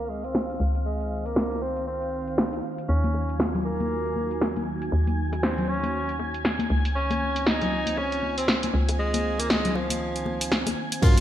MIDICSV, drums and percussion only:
0, 0, Header, 1, 2, 480
1, 0, Start_track
1, 0, Tempo, 508475
1, 807, Time_signature, 4, 2, 24, 8
1, 10577, End_track
2, 0, Start_track
2, 0, Title_t, "Drums"
2, 228, Note_on_c, 9, 42, 61
2, 323, Note_off_c, 9, 42, 0
2, 327, Note_on_c, 9, 38, 106
2, 422, Note_off_c, 9, 38, 0
2, 469, Note_on_c, 9, 42, 46
2, 563, Note_off_c, 9, 42, 0
2, 708, Note_on_c, 9, 42, 60
2, 803, Note_off_c, 9, 42, 0
2, 948, Note_on_c, 9, 42, 49
2, 1043, Note_off_c, 9, 42, 0
2, 1188, Note_on_c, 9, 42, 60
2, 1283, Note_off_c, 9, 42, 0
2, 1287, Note_on_c, 9, 38, 107
2, 1381, Note_off_c, 9, 38, 0
2, 1428, Note_on_c, 9, 42, 33
2, 1522, Note_off_c, 9, 42, 0
2, 1668, Note_on_c, 9, 42, 60
2, 1762, Note_off_c, 9, 42, 0
2, 1908, Note_on_c, 9, 42, 33
2, 2002, Note_off_c, 9, 42, 0
2, 2147, Note_on_c, 9, 42, 59
2, 2242, Note_off_c, 9, 42, 0
2, 2246, Note_on_c, 9, 38, 110
2, 2340, Note_off_c, 9, 38, 0
2, 2388, Note_on_c, 9, 42, 46
2, 2482, Note_off_c, 9, 42, 0
2, 2628, Note_on_c, 9, 42, 58
2, 2722, Note_off_c, 9, 42, 0
2, 2868, Note_on_c, 9, 42, 47
2, 2870, Note_on_c, 9, 63, 83
2, 2962, Note_off_c, 9, 42, 0
2, 2964, Note_off_c, 9, 63, 0
2, 2967, Note_on_c, 9, 60, 47
2, 3062, Note_off_c, 9, 60, 0
2, 3108, Note_on_c, 9, 42, 59
2, 3200, Note_on_c, 9, 63, 59
2, 3203, Note_off_c, 9, 42, 0
2, 3207, Note_on_c, 9, 38, 104
2, 3294, Note_off_c, 9, 63, 0
2, 3302, Note_off_c, 9, 38, 0
2, 3347, Note_on_c, 9, 64, 69
2, 3348, Note_on_c, 9, 42, 34
2, 3356, Note_on_c, 9, 60, 73
2, 3441, Note_off_c, 9, 64, 0
2, 3443, Note_off_c, 9, 42, 0
2, 3451, Note_off_c, 9, 60, 0
2, 3588, Note_on_c, 9, 42, 58
2, 3591, Note_on_c, 9, 63, 82
2, 3683, Note_off_c, 9, 42, 0
2, 3685, Note_off_c, 9, 63, 0
2, 3827, Note_on_c, 9, 60, 44
2, 3828, Note_on_c, 9, 42, 32
2, 3921, Note_off_c, 9, 60, 0
2, 3923, Note_off_c, 9, 42, 0
2, 3926, Note_on_c, 9, 63, 61
2, 4020, Note_off_c, 9, 63, 0
2, 4068, Note_on_c, 9, 42, 61
2, 4162, Note_off_c, 9, 42, 0
2, 4167, Note_on_c, 9, 38, 105
2, 4172, Note_on_c, 9, 60, 64
2, 4262, Note_off_c, 9, 38, 0
2, 4266, Note_off_c, 9, 60, 0
2, 4308, Note_on_c, 9, 42, 46
2, 4313, Note_on_c, 9, 63, 89
2, 4403, Note_off_c, 9, 42, 0
2, 4408, Note_off_c, 9, 63, 0
2, 4548, Note_on_c, 9, 42, 59
2, 4642, Note_on_c, 9, 60, 51
2, 4643, Note_off_c, 9, 42, 0
2, 4737, Note_off_c, 9, 60, 0
2, 4788, Note_on_c, 9, 42, 51
2, 4790, Note_on_c, 9, 63, 76
2, 4883, Note_off_c, 9, 42, 0
2, 4884, Note_off_c, 9, 63, 0
2, 5027, Note_on_c, 9, 60, 77
2, 5029, Note_on_c, 9, 42, 63
2, 5121, Note_off_c, 9, 60, 0
2, 5123, Note_off_c, 9, 42, 0
2, 5126, Note_on_c, 9, 63, 55
2, 5128, Note_on_c, 9, 38, 104
2, 5221, Note_off_c, 9, 63, 0
2, 5222, Note_off_c, 9, 38, 0
2, 5269, Note_on_c, 9, 42, 35
2, 5270, Note_on_c, 9, 64, 75
2, 5363, Note_off_c, 9, 42, 0
2, 5365, Note_off_c, 9, 64, 0
2, 5506, Note_on_c, 9, 60, 47
2, 5508, Note_on_c, 9, 63, 81
2, 5509, Note_on_c, 9, 42, 59
2, 5600, Note_off_c, 9, 60, 0
2, 5602, Note_off_c, 9, 63, 0
2, 5603, Note_off_c, 9, 42, 0
2, 5748, Note_on_c, 9, 42, 34
2, 5842, Note_off_c, 9, 42, 0
2, 5846, Note_on_c, 9, 60, 74
2, 5847, Note_on_c, 9, 63, 54
2, 5941, Note_off_c, 9, 60, 0
2, 5941, Note_off_c, 9, 63, 0
2, 5988, Note_on_c, 9, 42, 62
2, 6082, Note_off_c, 9, 42, 0
2, 6087, Note_on_c, 9, 38, 104
2, 6181, Note_off_c, 9, 38, 0
2, 6222, Note_on_c, 9, 63, 84
2, 6228, Note_on_c, 9, 42, 48
2, 6316, Note_off_c, 9, 63, 0
2, 6322, Note_off_c, 9, 42, 0
2, 6328, Note_on_c, 9, 60, 46
2, 6423, Note_off_c, 9, 60, 0
2, 6468, Note_on_c, 9, 42, 60
2, 6562, Note_off_c, 9, 42, 0
2, 6707, Note_on_c, 9, 63, 87
2, 6708, Note_on_c, 9, 42, 52
2, 6709, Note_on_c, 9, 60, 70
2, 6802, Note_off_c, 9, 42, 0
2, 6802, Note_off_c, 9, 63, 0
2, 6803, Note_off_c, 9, 60, 0
2, 6948, Note_on_c, 9, 42, 64
2, 7042, Note_off_c, 9, 42, 0
2, 7046, Note_on_c, 9, 63, 61
2, 7047, Note_on_c, 9, 38, 106
2, 7141, Note_off_c, 9, 38, 0
2, 7141, Note_off_c, 9, 63, 0
2, 7186, Note_on_c, 9, 60, 51
2, 7188, Note_on_c, 9, 42, 35
2, 7195, Note_on_c, 9, 64, 77
2, 7280, Note_off_c, 9, 60, 0
2, 7282, Note_off_c, 9, 42, 0
2, 7289, Note_off_c, 9, 64, 0
2, 7425, Note_on_c, 9, 63, 79
2, 7427, Note_on_c, 9, 42, 64
2, 7519, Note_off_c, 9, 63, 0
2, 7522, Note_off_c, 9, 42, 0
2, 7527, Note_on_c, 9, 60, 79
2, 7622, Note_off_c, 9, 60, 0
2, 7668, Note_on_c, 9, 42, 36
2, 7762, Note_off_c, 9, 42, 0
2, 7765, Note_on_c, 9, 63, 53
2, 7859, Note_off_c, 9, 63, 0
2, 7908, Note_on_c, 9, 42, 67
2, 8002, Note_off_c, 9, 42, 0
2, 8006, Note_on_c, 9, 60, 49
2, 8007, Note_on_c, 9, 38, 108
2, 8101, Note_off_c, 9, 38, 0
2, 8101, Note_off_c, 9, 60, 0
2, 8148, Note_on_c, 9, 42, 51
2, 8156, Note_on_c, 9, 63, 83
2, 8242, Note_off_c, 9, 42, 0
2, 8250, Note_off_c, 9, 63, 0
2, 8388, Note_on_c, 9, 42, 62
2, 8391, Note_on_c, 9, 60, 80
2, 8482, Note_off_c, 9, 42, 0
2, 8486, Note_off_c, 9, 60, 0
2, 8628, Note_on_c, 9, 42, 55
2, 8628, Note_on_c, 9, 63, 85
2, 8723, Note_off_c, 9, 42, 0
2, 8723, Note_off_c, 9, 63, 0
2, 8869, Note_on_c, 9, 42, 66
2, 8869, Note_on_c, 9, 60, 52
2, 8963, Note_off_c, 9, 42, 0
2, 8963, Note_off_c, 9, 60, 0
2, 8967, Note_on_c, 9, 63, 65
2, 8968, Note_on_c, 9, 38, 113
2, 9062, Note_off_c, 9, 38, 0
2, 9062, Note_off_c, 9, 63, 0
2, 9109, Note_on_c, 9, 42, 36
2, 9111, Note_on_c, 9, 64, 76
2, 9203, Note_off_c, 9, 42, 0
2, 9205, Note_off_c, 9, 64, 0
2, 9207, Note_on_c, 9, 60, 82
2, 9302, Note_off_c, 9, 60, 0
2, 9341, Note_on_c, 9, 63, 84
2, 9349, Note_on_c, 9, 42, 65
2, 9435, Note_off_c, 9, 63, 0
2, 9444, Note_off_c, 9, 42, 0
2, 9589, Note_on_c, 9, 42, 37
2, 9682, Note_on_c, 9, 63, 61
2, 9683, Note_off_c, 9, 42, 0
2, 9685, Note_on_c, 9, 60, 55
2, 9777, Note_off_c, 9, 63, 0
2, 9780, Note_off_c, 9, 60, 0
2, 9829, Note_on_c, 9, 42, 67
2, 9923, Note_off_c, 9, 42, 0
2, 9927, Note_on_c, 9, 38, 110
2, 10022, Note_off_c, 9, 38, 0
2, 10067, Note_on_c, 9, 63, 87
2, 10069, Note_on_c, 9, 42, 53
2, 10070, Note_on_c, 9, 60, 74
2, 10162, Note_off_c, 9, 63, 0
2, 10163, Note_off_c, 9, 42, 0
2, 10164, Note_off_c, 9, 60, 0
2, 10309, Note_on_c, 9, 42, 63
2, 10403, Note_off_c, 9, 42, 0
2, 10407, Note_on_c, 9, 36, 124
2, 10408, Note_on_c, 9, 49, 102
2, 10411, Note_on_c, 9, 42, 90
2, 10411, Note_on_c, 9, 54, 33
2, 10502, Note_off_c, 9, 36, 0
2, 10502, Note_off_c, 9, 49, 0
2, 10505, Note_off_c, 9, 42, 0
2, 10506, Note_off_c, 9, 54, 0
2, 10577, End_track
0, 0, End_of_file